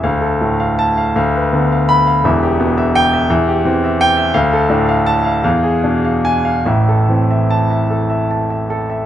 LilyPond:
<<
  \new Staff \with { instrumentName = "Grand piano" } { \time 6/8 \key a \minor \tempo 4. = 53 << { r4 a''8 r4 b''8 | r4 g''8 r4 g''8 | r4 a''8 r4 gis''8 | r4 a''8 r4. | } \\ { f''16 a'16 a,16 f''8 f''16 f''16 b'16 d16 f''8 f''16 | e''16 g'16 b,16 e''8 e''16 e''16 g'16 e16 e''8 e''16 | f''16 a'16 a,16 f''8 f''16 f''16 gis'16 b,16 f''8 f''16 | e''16 a'16 e16 e''8 e''16 a'16 e''16 a''16 e''16 a'16 e''16 | } >> }
  \new Staff \with { instrumentName = "Grand piano" } { \clef bass \time 6/8 \key a \minor d,8 a4 d,8 b4 | <e,, e,>8 b4 e,8 c'4 | d,8 d'4 e,8 d'4 | <a,, a,>8 c'4 r4. | }
>>